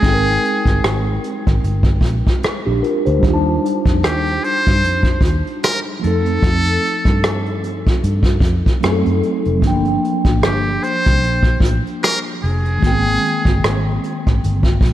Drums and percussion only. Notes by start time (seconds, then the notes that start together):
0.03 kick, closed hi-hat
0.26 closed hi-hat
0.45 closed hi-hat
0.66 kick, cross-stick, closed hi-hat
0.84 cross-stick, closed hi-hat
1.24 closed hi-hat
1.47 kick, cross-stick, closed hi-hat
1.64 closed hi-hat
1.83 kick
2.01 kick
2.05 closed hi-hat
2.27 kick, closed hi-hat
2.43 cross-stick, closed hi-hat
2.84 closed hi-hat
3.06 closed hi-hat
3.23 kick, closed hi-hat
3.66 closed hi-hat
3.86 kick, cross-stick, closed hi-hat
4.04 cross-stick, closed hi-hat
4.26 closed hi-hat
4.44 closed hi-hat
4.67 kick, cross-stick, closed hi-hat
4.84 closed hi-hat
5.03 kick, closed hi-hat
5.21 kick
5.25 closed hi-hat
5.47 closed hi-hat
5.63 cross-stick, closed hi-hat
6.04 closed hi-hat
6.26 closed hi-hat
6.43 kick, closed hi-hat
6.85 closed hi-hat
7.05 kick, cross-stick, closed hi-hat
7.24 cross-stick, closed hi-hat
7.46 closed hi-hat
7.64 closed hi-hat
7.86 kick, closed hi-hat
8.04 closed hi-hat
8.23 kick, closed hi-hat
8.40 kick
8.45 closed hi-hat
8.66 kick, closed hi-hat
8.83 cross-stick, closed hi-hat
9.06 closed hi-hat
9.23 closed hi-hat
9.45 closed hi-hat
9.62 kick, closed hi-hat
9.85 closed hi-hat
10.05 closed hi-hat
10.25 kick, cross-stick, closed hi-hat
10.43 cross-stick, closed hi-hat
10.83 closed hi-hat
11.06 kick, cross-stick, closed hi-hat
11.24 closed hi-hat
11.43 kick, closed hi-hat
11.60 kick
11.65 closed hi-hat
11.87 closed hi-hat
12.03 cross-stick, closed hi-hat
12.44 open hi-hat
12.66 closed hi-hat
12.83 kick, closed hi-hat
13.05 closed hi-hat
13.25 closed hi-hat
13.45 kick, cross-stick, closed hi-hat
13.64 cross-stick, closed hi-hat
14.04 closed hi-hat
14.27 kick, cross-stick, closed hi-hat
14.44 closed hi-hat
14.63 kick, closed hi-hat
14.81 kick
14.85 closed hi-hat